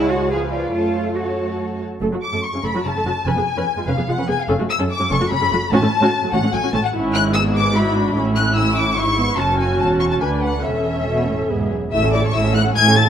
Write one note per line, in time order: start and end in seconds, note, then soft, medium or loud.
0.00 0.74 C#2 medium
0.00 0.30 G#3 medium
0.00 0.10 E4 loud
0.00 0.31 C#5 medium
0.00 0.31 F#5 medium
0.00 0.32 A5 medium
0.11 0.31 F#4 medium
0.30 0.74 F3 medium
0.30 0.39 G#4 medium
0.30 0.73 B4 medium
0.30 0.52 F5 medium
0.30 0.73 G#5 medium
0.53 0.72 F4 medium
0.53 0.74 D5 medium
0.72 1.79 F#2 medium
0.72 1.78 A3 medium
0.72 1.16 F4 medium
0.72 1.14 A4 medium
0.72 1.14 C#5 medium
0.72 1.16 A5 medium
1.15 1.81 F#4 medium
1.15 1.80 A4 medium
1.15 1.79 C#5 medium
1.15 1.80 A5 medium
2.01 2.06 F#1 medium
2.01 2.06 F#2 medium
2.01 2.06 A3 medium
2.01 2.06 A4 medium
2.12 2.16 F#2 medium
2.12 2.17 F#3 soft
2.12 2.17 F#4 soft
2.22 2.41 D6 medium
2.22 2.42 D6 medium
2.33 2.37 F#2 medium
2.33 2.37 A3 medium
2.33 2.37 A4 medium
2.42 2.50 C#6 medium
2.42 2.65 C#6 medium
2.54 2.58 F#2 medium
2.54 2.58 C#3 medium
2.54 2.58 C#4 medium
2.62 2.68 F#1 medium
2.62 2.68 F#2 medium
2.62 2.68 A3 medium
2.62 2.68 A4 medium
2.62 2.84 B5 medium
2.62 2.85 B5 medium
2.74 2.79 F#2 medium
2.74 2.79 F#3 medium
2.74 2.79 F#4 medium
2.83 2.89 F#1 medium
2.83 2.89 F#2 medium
2.83 2.90 C#3 medium
2.83 2.90 C#4 medium
2.83 3.25 A5 medium
2.83 3.26 A5 medium
2.95 2.99 F#2 medium
2.95 3.00 A3 medium
2.95 3.00 A4 medium
3.05 3.09 F#1 medium
3.05 3.09 F#2 medium
3.05 3.10 F#3 medium
3.05 3.11 F#4 medium
3.25 3.30 F1 medium
3.25 3.30 F2 medium
3.25 3.30 C#4 medium
3.25 3.31 B4 medium
3.25 3.88 G#5 loud
3.25 3.88 G#5 medium
3.36 3.41 F2 medium
3.36 3.41 B3 medium
3.36 3.41 G#4 medium
3.57 3.61 F2 medium
3.57 3.61 C#4 medium
3.57 3.61 B4 medium
3.77 3.82 F2 medium
3.77 3.81 G#3 medium
3.77 3.81 F4 medium
3.87 3.91 F1 medium
3.87 3.92 F2 medium
3.87 3.91 C#4 medium
3.87 3.91 B4 medium
3.87 4.07 F5 medium
3.87 4.08 F5 medium
3.98 4.02 F2 medium
3.98 4.02 B3 medium
3.98 4.02 G#4 medium
4.07 4.12 F1 medium
4.07 4.12 F2 medium
4.07 4.12 G#3 medium
4.07 4.12 F4 medium
4.07 4.28 F#5 medium
4.07 4.29 F#5 loud
4.18 4.22 F2 medium
4.18 4.22 C#4 medium
4.18 4.22 B4 medium
4.27 4.33 F1 medium
4.27 4.33 F2 medium
4.27 4.32 B3 medium
4.27 4.32 G#4 medium
4.27 4.38 G#5 medium
4.27 4.39 G#5 loud
4.39 4.49 F5 medium
4.39 4.50 F5 medium
4.49 4.53 F#1 medium
4.49 4.53 F#2 medium
4.49 4.53 C#4 medium
4.49 4.53 A4 medium
4.59 4.64 F#2 medium
4.59 4.63 A3 medium
4.59 4.64 F#4 medium
4.69 4.77 E6 medium
4.69 4.79 E6 loud
4.79 4.84 F#2 medium
4.79 4.83 C#4 medium
4.79 4.84 A4 medium
4.91 5.11 D6 medium
4.91 5.11 D6 loud
5.00 5.05 F#2 medium
5.00 5.04 F#3 medium
5.00 5.04 C#4 medium
5.10 5.15 F#1 loud
5.10 5.15 F#2 medium
5.10 5.15 C#4 medium
5.10 5.15 A4 medium
5.10 5.19 C#6 medium
5.10 5.32 C#6 loud
5.21 5.26 F#2 medium
5.21 5.25 A3 medium
5.21 5.25 F#4 medium
5.30 5.35 F#1 medium
5.30 5.36 F#2 medium
5.30 5.36 F#3 medium
5.30 5.35 C#4 medium
5.30 5.71 B5 medium
5.30 5.71 B5 loud
5.41 5.46 F#2 medium
5.41 5.46 C#4 medium
5.41 5.45 A4 medium
5.51 5.55 F#1 medium
5.51 5.56 F#2 medium
5.51 5.56 A3 medium
5.51 5.56 F#4 medium
5.72 5.76 A1 loud
5.72 5.76 A2 medium
5.72 5.76 C#4 loud
5.72 5.76 F#4 loud
5.72 6.33 A5 loud
5.72 6.32 A5 loud
5.82 5.86 A2 medium
5.82 5.87 A3 medium
5.82 5.86 C#4 medium
6.02 6.06 A2 loud
6.02 6.07 C#4 medium
6.02 6.07 F#4 medium
6.22 6.27 A2 medium
6.22 6.28 F#3 medium
6.22 6.27 A3 medium
6.33 6.37 A1 loud
6.33 6.37 A2 loud
6.33 6.37 C#4 medium
6.33 6.37 F#4 medium
6.33 6.54 F#5 medium
6.33 6.53 F#5 loud
6.43 6.47 A2 medium
6.43 6.47 A3 medium
6.43 6.47 C#4 medium
6.53 6.57 A1 medium
6.53 6.57 A2 medium
6.53 6.57 F#3 medium
6.53 6.57 A3 medium
6.53 6.61 G#5 medium
6.53 6.74 G#5 loud
6.63 6.67 A2 loud
6.63 6.67 C#4 medium
6.63 6.67 F#4 medium
6.73 6.78 A1 medium
6.73 6.78 A2 medium
6.73 6.78 A3 medium
6.73 6.78 C#4 medium
6.73 6.84 A5 medium
6.73 6.84 A5 loud
6.84 6.94 F#5 medium
6.84 6.89 F#5 medium
6.93 8.12 G#1 medium
6.93 8.12 G#2 medium
6.93 7.32 C#4 medium
6.93 7.32 E4 medium
7.13 7.21 F#6 loud
7.13 7.23 F#6 loud
7.33 7.75 B3 medium
7.33 7.75 G#4 medium
7.33 7.41 E6 loud
7.33 7.42 E6 loud
7.55 7.75 D6 loud
7.75 7.95 E4 medium
7.75 8.16 F#4 medium
7.75 8.16 B5 medium
7.75 8.16 B5 loud
7.95 8.16 D4 medium
8.15 8.97 A1 medium
8.15 8.97 A2 medium
8.15 8.55 C#4 medium
8.15 8.95 E4 medium
8.36 8.44 F#6 loud
8.36 8.55 F#6 medium
8.56 8.96 C#4 medium
8.56 8.76 E6 medium
8.56 8.77 E6 loud
8.76 8.97 D6 medium
8.76 8.97 D6 loud
8.96 9.38 G#1 medium
8.96 9.38 G#2 medium
8.96 9.37 E4 medium
8.96 9.38 C#6 loud
8.96 9.38 C#6 medium
9.17 9.38 B3 medium
9.37 9.78 F#1 medium
9.37 9.79 F#2 medium
9.37 10.21 C#4 medium
9.37 10.21 F#4 medium
9.37 9.59 A5 loud
9.58 9.79 G#5 medium
9.79 10.21 E1 medium
9.79 10.21 E2 medium
9.79 9.87 A5 loud
9.79 10.00 A5 medium
10.00 10.04 C#6 loud
10.00 10.04 C#6 medium
10.09 10.20 A5 medium
10.09 10.16 A5 medium
10.21 10.63 D2 medium
10.21 10.64 D4 medium
10.21 10.64 B4 medium
10.21 10.29 G#5 medium
10.21 10.42 G#5 medium
10.42 10.64 F#5 medium
10.42 10.63 F#5 medium
10.63 11.48 E1 medium
10.63 11.02 E2 medium
10.63 11.48 C#4 medium
10.63 11.49 A4 medium
10.63 11.68 E5 medium
10.63 11.71 E5 medium
11.06 11.27 B2 medium
11.28 11.50 A2 medium
11.49 11.71 E1 medium
11.49 11.71 G#2 medium
11.49 11.72 B3 medium
11.49 11.72 G#4 medium
11.71 11.92 F#2 medium
11.91 12.29 A1 medium
11.91 12.29 A2 medium
11.91 12.02 A3 medium
11.91 12.02 E4 medium
11.91 12.11 E5 loud
11.91 12.12 E6 loud
12.03 12.13 C#4 medium
12.03 12.13 A4 medium
12.12 12.24 A3 medium
12.12 12.24 E4 medium
12.12 12.23 D5 medium
12.12 12.23 D6 loud
12.24 12.34 C#4 medium
12.24 12.34 A4 medium
12.24 12.34 C#5 medium
12.24 12.35 C#6 loud
12.33 12.71 A1 medium
12.33 12.71 A2 medium
12.33 12.44 A3 medium
12.33 12.44 E4 medium
12.33 12.54 E5 loud
12.33 12.55 E6 loud
12.44 12.55 C#4 medium
12.44 12.55 A4 medium
12.54 12.65 A3 medium
12.54 12.65 E4 medium
12.54 12.75 F#5 loud
12.54 12.62 F#6 loud
12.65 12.76 C#4 medium
12.65 12.76 A4 medium
12.75 13.09 A1 medium
12.75 13.09 A2 loud
12.75 12.85 A3 medium
12.75 12.85 E4 medium
12.75 12.96 G#5 loud
12.75 12.96 G#6 loud
12.86 12.96 C#4 medium
12.86 12.96 A4 medium
12.96 13.07 A3 medium
12.96 13.07 E4 medium
12.96 13.09 A5 loud
12.96 13.09 A6 loud